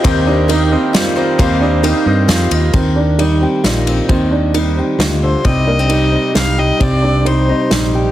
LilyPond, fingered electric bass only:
\new Staff \with { instrumentName = "Fingered electric bass" } { \clef bass \time 3/4 \key ees \major \tempo 4 = 133 ees,2 r4 | ees,4. g,8 f,8 ees,8 | ees,2 bes,,4 | ees,2 d,4 |
c,2 c,4 | c,2 bes,,4 | }